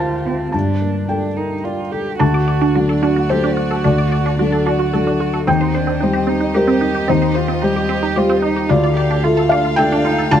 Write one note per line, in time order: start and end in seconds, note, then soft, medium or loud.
0.00 0.49 D2 soft
0.00 0.55 A#3 soft
0.00 0.25 F4 soft
0.00 0.28 F4 soft
0.00 0.14 A#4 soft
0.00 0.42 C5 soft
0.00 0.56 F5 soft
0.00 0.55 G5 medium
0.00 0.49 A5 medium
0.25 0.54 C4 soft
0.25 0.53 F4 soft
0.52 2.17 G2 soft
0.52 1.04 D4 soft
0.52 1.05 A5 medium
0.82 1.26 A#3 soft
1.09 1.38 D4 soft
1.09 1.54 A4 soft
1.09 1.61 G5 soft
1.36 1.65 D#4 soft
1.36 1.81 A#4 soft
1.64 1.93 F4 soft
1.64 2.09 D5 soft
1.92 2.18 G4 soft
1.92 2.20 A4 soft
2.18 2.74 D2 soft
2.18 5.43 A3 soft
2.18 2.28 D4 medium
2.18 2.77 F#4 medium
2.18 5.43 F#4 soft
2.18 5.43 D5 soft
2.18 3.26 A5 medium
2.34 2.43 D5 medium
2.48 2.56 D5 medium
2.61 2.70 D4 medium
2.75 3.26 F#3 soft
2.75 3.03 D4 soft
2.75 3.27 D4 soft
2.75 2.84 F#4 medium
2.75 3.27 A4 soft
2.89 2.97 A4 medium
3.02 3.11 D4 medium
3.02 3.31 F#4 soft
3.16 3.25 F#4 medium
3.29 3.81 F#3 soft
3.29 3.81 D4 soft
3.29 3.57 G4 medium
3.29 3.38 A4 medium
3.29 3.82 A4 soft
3.29 3.81 C5 medium
3.44 3.52 D4 medium
3.57 3.65 F#4 medium
3.57 4.38 F#4 medium
3.71 3.79 A4 medium
3.84 4.38 D2 soft
3.84 3.93 D4 medium
3.84 5.16 D5 medium
3.98 4.06 D5 medium
4.12 4.20 D5 medium
4.26 4.34 D4 medium
4.39 4.90 F#3 soft
4.39 4.68 D4 medium
4.39 4.90 D4 soft
4.39 4.47 F#4 medium
4.39 4.90 A4 soft
4.52 4.61 A4 medium
4.66 4.74 D4 medium
4.66 5.47 F#4 medium
4.79 4.88 F#4 medium
4.93 5.43 F#3 soft
4.93 5.44 D4 soft
4.93 5.01 A4 medium
4.93 5.44 A4 soft
5.07 5.15 D4 medium
5.20 5.28 F#4 medium
5.34 5.42 A4 medium
5.47 6.00 D#2 soft
5.47 5.55 C4 medium
5.47 8.71 C4 soft
5.47 5.76 D#4 medium
5.47 8.71 G4 soft
5.47 8.71 D#5 soft
5.47 6.51 G5 medium
5.61 5.69 C5 medium
5.75 6.05 D4 soft
5.75 5.83 C5 medium
5.87 5.95 C4 medium
6.00 6.52 G3 soft
6.00 6.30 C4 medium
6.00 6.09 D#4 medium
6.00 6.52 G4 soft
6.00 6.52 C5 soft
6.13 6.22 G4 medium
6.27 6.35 C4 medium
6.27 6.58 D#4 medium
6.41 6.49 D#4 medium
6.54 7.05 G3 soft
6.54 6.63 G4 medium
6.54 7.11 G4 medium
6.54 7.05 G4 soft
6.54 7.05 A#4 medium
6.54 7.06 C5 soft
6.68 6.76 C4 medium
6.81 6.89 D#4 medium
6.95 7.03 G4 medium
7.08 7.61 D#2 medium
7.08 7.16 C4 medium
7.08 7.37 D#4 medium
7.08 7.62 C5 medium
7.22 7.30 C5 medium
7.35 7.65 F4 medium
7.35 7.43 C5 medium
7.48 7.57 C4 medium
7.62 8.12 G3 soft
7.62 7.70 D#4 medium
7.62 8.19 G4 medium
7.62 8.13 G4 soft
7.62 8.13 C5 soft
7.76 7.84 G4 medium
7.89 7.97 C4 medium
8.03 8.11 D#4 medium
8.16 8.66 G3 soft
8.16 8.43 F4 medium
8.16 8.24 G4 medium
8.16 8.67 G4 soft
8.16 8.67 C5 soft
8.29 8.38 C4 medium
8.42 8.51 D#4 medium
8.42 8.71 D#4 medium
8.56 8.64 G4 medium
8.69 9.22 D2 medium
8.69 10.40 A3 soft
8.69 8.78 D4 medium
8.69 8.95 F4 medium
8.69 10.40 A4 medium
8.69 9.47 D5 medium
8.69 10.40 F5 medium
8.84 8.92 D5 medium
8.95 9.25 G4 medium
8.95 9.05 D5 medium
9.11 9.19 D4 medium
9.23 9.74 A3 medium
9.23 9.80 F4 medium
9.23 9.32 F4 medium
9.23 9.74 F4 soft
9.23 9.74 A4 medium
9.37 9.45 A4 medium
9.49 9.59 D4 medium
9.49 9.75 F5 medium
9.65 9.73 F4 medium
9.76 10.28 A3 medium
9.76 10.06 D4 medium
9.76 10.28 F4 soft
9.76 9.86 A4 medium
9.76 10.28 A4 medium
9.76 10.27 G5 loud
9.92 10.00 D4 medium
10.05 10.31 D#4 medium
10.05 10.13 F4 medium
10.18 10.26 A4 medium
10.31 10.40 D2 medium
10.31 10.40 D4 medium
10.31 10.40 F4 medium
10.31 10.40 A5 loud